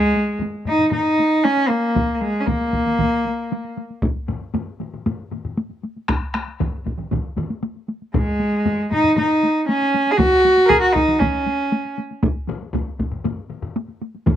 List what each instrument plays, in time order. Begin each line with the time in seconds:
Already playing: cello G#3
0.15 taiko high
0.28 taiko high
0.39 taiko low-mid, taiko high
0.55 taiko high
0.65 cello D#4, taiko low-mid, taiko high
0.79 taiko low-mid, taiko high
0.91 cello D#4, taiko low-mid, taiko high
1.06 taiko high
1.19 taiko high
1.44 cello C#4, taiko high
1.57 taiko high
1.69 cello A#3, taiko high
1.95 taiko, taiko mid, taiko high
2.09 taiko high
2.15 cello A#3
2.21 cello G#3, taiko high
2.35 taiko high
2.41 cello C#4
2.47 cello A#3, taiko, taiko mid, taiko high
2.61 taiko high
2.73 taiko, taiko mid, taiko high
2.86 taiko mid, taiko high
2.99 taiko, taiko mid, taiko high
3.13 taiko high
3.25 taiko high
3.52 taiko high
3.64 taiko high
3.77 taiko high
3.90 taiko high
4.02 taiko, taiko high
4.16 taiko high
4.28 taiko low-mid, taiko high
4.42 taiko high
4.54 taiko low-mid, taiko high
4.67 taiko high
4.80 taiko low-mid, taiko high
4.94 taiko low-mid, taiko high
5.06 taiko low-mid, taiko high
5.20 taiko high
5.31 taiko low-mid, taiko high
5.45 taiko low-mid
5.57 taiko high
5.71 taiko high
5.83 taiko high
5.96 taiko high
6.08 taiko rim, taiko, taiko high
6.22 taiko high
6.34 taiko rim, taiko high
6.48 taiko high
6.60 taiko, taiko low-mid, taiko mid, taiko high
6.73 taiko high
6.86 taiko, taiko high
6.98 taiko low-mid, taiko mid, taiko high
7.11 taiko, taiko low-mid, taiko mid, taiko high
7.24 taiko high
7.37 taiko low-mid, taiko mid, taiko high
7.50 taiko high
7.63 taiko high
7.76 taiko high
7.89 taiko high
8.02 taiko high
8.14 cello G#3, taiko, taiko low-mid, taiko high
8.27 taiko high
8.40 taiko high
8.53 taiko high
8.66 taiko low-mid, taiko high
8.79 taiko high
8.92 cello D#4, taiko low-mid, taiko high
9.04 taiko low-mid, taiko high
9.16 cello D#4, taiko low-mid, taiko high
9.30 taiko high
9.43 taiko high
9.68 cello C#4, taiko high
9.82 taiko high
9.94 taiko high
10.07 taiko high
10.11 cello G#4
10.17 cello F#4, taiko, taiko mid, taiko high
10.32 taiko high
10.45 taiko high
10.57 taiko high
10.66 cello G#4 A#4, taiko mid
10.70 taiko, taiko high
10.81 cello F#4, taiko high
10.93 cello D#4, taiko, taiko mid, taiko high
11.08 taiko mid, taiko high
11.19 cello C#4, taiko, taiko mid, taiko high
11.34 taiko high
11.46 taiko high
11.72 taiko high
11.85 taiko high
11.98 taiko high
12.11 taiko high
12.23 taiko, taiko high
12.36 taiko high
12.48 taiko low-mid, taiko high
12.62 taiko high
12.74 taiko, taiko low-mid, taiko high
12.87 taiko high
12.99 taiko, taiko low-mid, taiko high
13.12 taiko low-mid, taiko high
13.24 taiko low-mid, taiko high
13.39 taiko high
13.50 taiko low-mid
13.62 taiko low-mid
13.76 taiko high
13.89 taiko high
14.02 taiko high
14.15 taiko high
14.26 taiko, taiko low-mid, taiko mid, taiko high